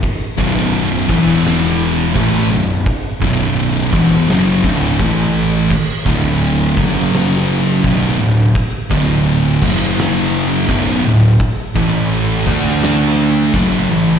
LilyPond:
<<
  \new Staff \with { instrumentName = "Distorted electric guitar" } { \clef bass \time 4/4 \key b \minor \tempo 4 = 84 r8 <b,, fis, b,>4 <e, b, e>4. <a, e a>8 <b,, fis,>8 | r8 <b,, fis, b,>4 <e, b, e>8 <fis, cis fis>8 <d, a, d>8 <a, e a>4 | r8 <d, a, d>4 <fis, cis fis>4. <b,, fis, b,>8 <d, a,>8 | r8 <d, a, d>4 <fis, cis fis>4. <b,, fis, b,>8 <d, a,>8 |
r8 <a, e a>4 <d a d'>4. <fis, cis fis>8 <a, e>8 | }
  \new Staff \with { instrumentName = "Distorted electric guitar" } { \clef bass \time 4/4 \key b \minor r8 <b,, fis, b,>4 <e, b, e>4. <a, e a>8 <b,, fis,>8 | r8 <b,, fis, b,>4 <e, b, e>8 <fis, cis fis>8 <d, a, d>8 <a, e a>4 | r8 <d, a, d>4 <fis, cis fis>4. <b,, fis, b,>8 <d, a,>8 | r8 <d, a, d>4 <fis, cis fis>4. <b,, fis, b,>8 <d, a,>8 |
r8 <a, e a>4 <d a d'>4. <fis, cis fis>8 <a, e>8 | }
  \new Staff \with { instrumentName = "Picked electric bass" } { \clef bass \time 4/4 \key b \minor r8 b,,,4 e,,4. a,,8 b,,,8 | r8 b,,,4 e,,8 fis,,8 d,,8 a,,4 | r8 d,,4 fis,,4. b,,,8 d,,8 | r8 d,,4 fis,,4. b,,,8 d,,8 |
r8 a,,4 d,4. fis,,8 a,,8 | }
  \new DrumStaff \with { instrumentName = "Drums" } \drummode { \time 4/4 <hho bd>8 bd8 hho8 bd8 <hho sn>4 <hho bd>4 | <hho bd>8 bd8 hho8 bd8 <hho sn>8 bd8 <hho bd>4 | <cymc bd>8 bd8 hho8 bd16 sn16 <hho sn>4 <hho bd>4 | <hho bd>8 bd8 hho8 <cymc bd>8 sn4 <hho bd>4 |
<hho bd>8 bd8 hho8 bd16 sn16 <hho sn>4 <hho bd>4 | }
>>